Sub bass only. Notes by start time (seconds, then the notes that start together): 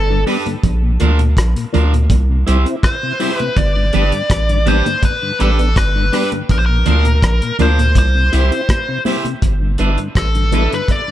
Already playing: G1
0.64 A#1
1.01 D2
1.37 A#1
1.75 D2
2.10 C2
2.48 C2
3.57 G1
3.95 G1
4.30 A1
5.41 A1
5.77 G1
6.50 A#1
6.87 D2
7.23 A#1
7.60 D2
7.96 C2
8.33 C2
9.43 G1
9.80 G1
10.16 A1